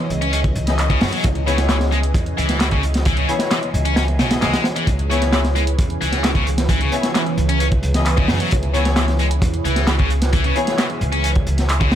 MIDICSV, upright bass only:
0, 0, Header, 1, 2, 480
1, 0, Start_track
1, 0, Key_signature, 4, "minor"
1, 0, Tempo, 454545
1, 1309, Time_signature, 4, 2, 24, 8
1, 12621, End_track
2, 0, Start_track
2, 0, Title_t, "Upright bass"
2, 0, Program_c, 0, 32
2, 108, Note_on_c, 0, 37, 100
2, 538, Note_off_c, 0, 37, 0
2, 590, Note_on_c, 0, 37, 94
2, 1019, Note_off_c, 0, 37, 0
2, 1068, Note_on_c, 0, 42, 102
2, 1158, Note_off_c, 0, 42, 0
2, 1315, Note_on_c, 0, 37, 102
2, 2221, Note_off_c, 0, 37, 0
2, 2264, Note_on_c, 0, 40, 95
2, 2443, Note_off_c, 0, 40, 0
2, 2512, Note_on_c, 0, 37, 90
2, 3420, Note_off_c, 0, 37, 0
2, 3948, Note_on_c, 0, 37, 102
2, 4429, Note_off_c, 0, 37, 0
2, 4429, Note_on_c, 0, 35, 96
2, 4606, Note_off_c, 0, 35, 0
2, 4669, Note_on_c, 0, 37, 92
2, 4758, Note_off_c, 0, 37, 0
2, 5145, Note_on_c, 0, 37, 98
2, 6057, Note_off_c, 0, 37, 0
2, 6111, Note_on_c, 0, 40, 94
2, 6287, Note_off_c, 0, 40, 0
2, 6349, Note_on_c, 0, 37, 91
2, 7259, Note_off_c, 0, 37, 0
2, 7788, Note_on_c, 0, 37, 103
2, 8218, Note_off_c, 0, 37, 0
2, 8267, Note_on_c, 0, 37, 92
2, 8697, Note_off_c, 0, 37, 0
2, 8748, Note_on_c, 0, 42, 106
2, 8837, Note_off_c, 0, 42, 0
2, 9004, Note_on_c, 0, 37, 100
2, 9906, Note_off_c, 0, 37, 0
2, 9945, Note_on_c, 0, 40, 97
2, 10124, Note_off_c, 0, 40, 0
2, 10190, Note_on_c, 0, 37, 92
2, 11099, Note_off_c, 0, 37, 0
2, 11628, Note_on_c, 0, 37, 99
2, 12058, Note_off_c, 0, 37, 0
2, 12109, Note_on_c, 0, 37, 97
2, 12588, Note_on_c, 0, 32, 92
2, 12603, Note_off_c, 0, 37, 0
2, 12621, Note_off_c, 0, 32, 0
2, 12621, End_track
0, 0, End_of_file